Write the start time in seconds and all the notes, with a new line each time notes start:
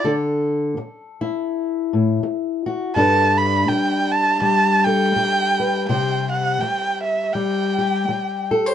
0.04 D3 A4
0.77 muted steel-string acoustic guitar stroke
1.21 E4
1.93 A2
2.23 muted steel-string acoustic guitar stroke
2.66 F#4
2.96 G2 G3 D4 A4 B4 A5
3.38 B5
3.68 G5, muted steel-string acoustic guitar stroke
4.12 A5
4.41 G3 A5
4.85 A4 G5
5.16 muted steel-string acoustic guitar stroke
5.60 B4
5.89 C3 C5 G5
6.32 F#5
6.61 G5, muted steel-string acoustic guitar stroke
7.03 E5
7.34 G3 G5
7.78 G4
8.08 muted steel-string acoustic guitar stroke
8.51 A4
8.66 C5